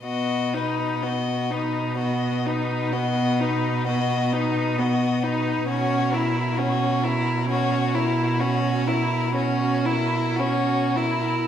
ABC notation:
X:1
M:12/8
L:1/8
Q:3/8=43
K:B
V:1 name="Violin"
d B d B d B d B d B d B | c A c A c A c A c A c A |]
V:2 name="Violin"
F D F D F D F D F D F D | F E F E F E F E F E F E |]
V:3 name="Viola"
B, D B, D B, D B, D B, D B, D | C E C E C E C E C E C E |]
V:4 name="Cello" clef=bass
B,,12 | B,,12 |]